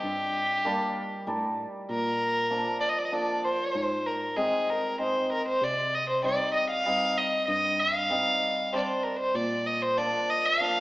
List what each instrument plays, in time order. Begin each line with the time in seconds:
Already playing: violin G4
0.04 tine electric piano G2
0.65 hammered dulcimer G3 A#3 D4
1.27 tine electric piano A2, hammered dulcimer G3 D4 A#4
1.89 tine electric piano A#2, violin A#4
2.50 hammered dulcimer F3 A#3 D4
2.80 violin D5
2.89 violin D#5
2.99 violin D5
3.05 violin D#5
3.12 hammered dulcimer F3 A#3 D4, violin D5
3.44 violin C5
3.75 tine electric piano G#2
4.06 violin A#4
4.36 hammered dulcimer G#3 C4 D#4, violin G#4
4.70 violin A#4
4.99 hammered dulcimer G#3 C4 D#4, violin C5
5.33 violin A#4
5.49 violin C5
5.61 tine electric piano C3, violin D5
5.95 violin D#5
6.10 violin C5
6.22 hammered dulcimer G3 C4 D#4, violin D5
6.54 violin D#5
6.70 violin F5
6.85 hammered dulcimer G3 C4 D#4
7.17 violin D#5
7.48 tine electric piano G2, violin D#5
7.80 violin F5
8.10 hammered dulcimer G3 C4 D#4
8.73 hammered dulcimer G3 C4 D4, violin C5 D5
8.85 violin C5
9.03 violin A#4
9.20 violin C5
9.35 tine electric piano A#2, violin D5
9.67 violin D#5
9.83 violin C5
9.97 hammered dulcimer F3 A#3 D4, violin D5
10.30 violin D#5
10.46 violin F5
10.60 hammered dulcimer F3 A#3 D4